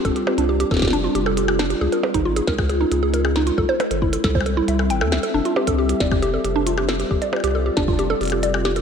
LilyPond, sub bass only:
\new Staff \with { instrumentName = "Sub bass" } { \clef bass \time 4/4 \key f \major \tempo 4 = 136 f,,16 r8 c,8 r16 f,,8. r16 f,,4~ f,,16 r16 | des,16 r8 aes,,8 r16 des,8. r16 des,4~ des,16 r16 | c,16 r8 g,,8 r16 c,8. r16 c,8 g,,16 e,16 c,16 r16 | f,,16 r8 c,8 r16 f,,8. r16 f,,4~ f,,16 r16 |
f,,16 r8 c,8 r16 f,,8. r16 f,,4~ f,,16 r16 | }